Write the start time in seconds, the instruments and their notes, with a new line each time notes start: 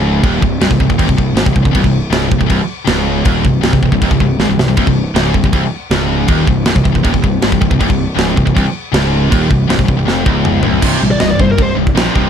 Already playing: picked electric bass C#1, distorted electric guitar C#2
0.23 picked electric bass D#1, distorted electric guitar D#2, kick, crash
0.41 picked electric bass C1, distorted electric guitar C2, kick
0.61 picked electric bass C1, distorted electric guitar C2, snare, crash
0.70 picked electric bass C1, distorted electric guitar C2, kick
0.79 picked electric bass C1, distorted electric guitar C2, kick
0.90 picked electric bass C1, distorted electric guitar C2, kick
0.98 picked electric bass D#1, distorted electric guitar D#2, kick, crash
1.07 picked electric bass C1, distorted electric guitar C2, kick
1.17 picked electric bass C1, distorted electric guitar C2, kick
1.34 picked electric bass G#1, distorted electric guitar G#2, snare, crash
1.45 picked electric bass C1, distorted electric guitar C2, kick
1.53 picked electric bass C1, distorted electric guitar C2, kick
1.62 picked electric bass C1, distorted electric guitar C2, kick
1.71 picked electric bass C1, distorted electric guitar C2, kick
1.75 distorted electric guitar C2, crash
1.81 picked electric bass C1, distorted electric guitar C2, kick
1.86 distorted electric guitar C2
2.10 picked electric bass C#1, distorted electric guitar C#2, snare, crash
2.28 picked electric bass C1, distorted electric guitar C2, kick
2.39 picked electric bass C1, distorted electric guitar C2, kick
2.46 distorted electric guitar C2, kick, crash
2.50 picked electric bass C1, distorted electric guitar C2
2.85 picked electric bass C#1, distorted electric guitar C#2, snare, crash
3.24 picked electric bass D#1, distorted electric guitar D#2, kick, crash
3.43 picked electric bass C1, distorted electric guitar C2, kick
3.61 picked electric bass C1, distorted electric guitar C2, snare, crash
3.73 picked electric bass C1, distorted electric guitar C2, kick
3.83 picked electric bass C1, distorted electric guitar C2, kick
3.92 picked electric bass C1, distorted electric guitar C2, kick
4.02 picked electric bass D#1, distorted electric guitar D#2, kick, crash
4.10 picked electric bass C1, distorted electric guitar C2, kick
4.20 picked electric bass C1, distorted electric guitar C2, kick
4.38 picked electric bass G#1, distorted electric guitar G#2, snare
4.49 picked electric bass C1, distorted electric guitar C2
4.57 picked electric bass C1, distorted electric guitar C2, snare
4.68 picked electric bass C1, distorted electric guitar C2
4.77 picked electric bass C1, distorted electric guitar C2, kick, crash
4.87 picked electric bass C1, distorted electric guitar C2, kick
5.15 picked electric bass C#1, distorted electric guitar C#2, snare, crash
5.34 picked electric bass C1, distorted electric guitar C2, kick
5.43 picked electric bass C1, distorted electric guitar C2, kick
5.53 picked electric bass C1, distorted electric guitar C2, kick, crash
5.90 picked electric bass C#1, distorted electric guitar C#2, snare, crash
6.28 picked electric bass D#1, distorted electric guitar D#2, kick, crash
6.47 picked electric bass C1, distorted electric guitar C2, kick
6.66 picked electric bass C1, distorted electric guitar C2, snare, crash
6.75 picked electric bass C1, distorted electric guitar C2, kick
6.84 picked electric bass C1, distorted electric guitar C2, kick
6.92 picked electric bass C1, distorted electric guitar C2, kick
7.04 picked electric bass D#1, distorted electric guitar D#2, kick, crash
7.13 picked electric bass C1, distorted electric guitar C2, kick
7.23 picked electric bass C1, distorted electric guitar C2, kick
7.42 picked electric bass G#1, distorted electric guitar G#2, snare, crash
7.52 picked electric bass C1, distorted electric guitar C2, kick
7.61 picked electric bass C1, distorted electric guitar C2, kick
7.70 picked electric bass C1, distorted electric guitar C2, kick
7.79 picked electric bass C1, distorted electric guitar C2, kick, crash
7.89 picked electric bass C1, distorted electric guitar C2, kick
8.15 picked electric bass C#1, distorted electric guitar C#2, snare, crash
8.36 picked electric bass C1, distorted electric guitar C2, kick
8.46 picked electric bass C1, distorted electric guitar C2, kick
8.55 picked electric bass C1, distorted electric guitar C2, kick, crash
8.92 picked electric bass C#1, distorted electric guitar C#2, snare, crash
9.30 picked electric bass D#1, distorted electric guitar D#2, kick, crash
9.50 picked electric bass C1, distorted electric guitar C2, kick
9.67 picked electric bass C1, distorted electric guitar C2, snare, crash
9.76 picked electric bass C1, distorted electric guitar C2, kick
9.80 distorted electric guitar C2
9.85 picked electric bass C1, distorted electric guitar C2, kick
9.97 picked electric bass C1, distorted electric guitar C2
10.05 picked electric bass F1, distorted electric guitar F2, snare
10.25 picked electric bass C#1, distorted electric guitar C#2, kick
10.45 mid tom
10.63 picked electric bass C1, distorted electric guitar C2, floor tom
10.82 picked electric bass C1, distorted electric guitar C2 G2 C3, kick, crash, china
11.02 picked electric bass A#1, distorted electric guitar C2 G2
11.11 lead electric guitar D5
11.20 picked electric bass C1, distorted electric guitar C2 G2, lead electric guitar D#5, snare, china
11.31 lead electric guitar D5
11.40 picked electric bass G1, distorted electric guitar C2 G2, lead electric guitar C5, kick
11.51 lead electric guitar A#4
11.58 picked electric bass C1, distorted electric guitar C2 G2, kick, china
11.62 lead electric guitar C5
11.76 picked electric bass C1, distorted electric guitar C2 G2
11.87 kick
11.95 picked electric bass A#1, distorted electric guitar C2 G2 C3, snare, china
12.14 picked electric bass C1, distorted electric guitar C2 G2 C3, kick